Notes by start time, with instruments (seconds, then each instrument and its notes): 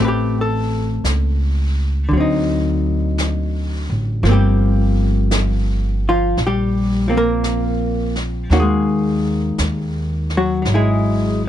Already playing: upright bass A1, hollow-body jazz guitar A3
0.00 hollow-body jazz guitar C4 G4
0.05 hollow-body jazz guitar G4 B4
0.41 hollow-body jazz guitar A4
1.04 upright bass C#2, brush sweep, snare, hi-hat pedal
2.09 upright bass D2, hollow-body jazz guitar D3, brush sweep
2.13 hollow-body jazz guitar F#3 C4
2.20 hollow-body jazz guitar D#4
3.18 brush sweep, snare, hi-hat pedal
3.90 upright bass A1
4.23 upright bass G1, hollow-body jazz guitar F3 A#3, brush sweep, snare
4.29 hollow-body jazz guitar G3 C4 G4
5.31 brush sweep, snare, hi-hat pedal
6.09 hollow-body jazz guitar F3 F4
6.37 upright bass A#1, brush sweep, snare
6.47 hollow-body jazz guitar G3 G4
7.08 hollow-body jazz guitar F3 A#3 C4
7.17 hollow-body jazz guitar A#3 A#4
7.44 brush sweep, snare, hi-hat pedal
8.15 snare
8.50 upright bass D#2, hollow-body jazz guitar D#3 A#3 C#4 F#4, brush sweep, snare
8.60 hollow-body jazz guitar G#3 G#4
9.58 upright bass D#2, brush sweep, snare, hi-hat pedal
10.30 snare
10.37 hollow-body jazz guitar F#3 F#4
10.62 upright bass G#1, hollow-body jazz guitar F#3, brush sweep, snare
10.74 hollow-body jazz guitar G#3 E4 G#4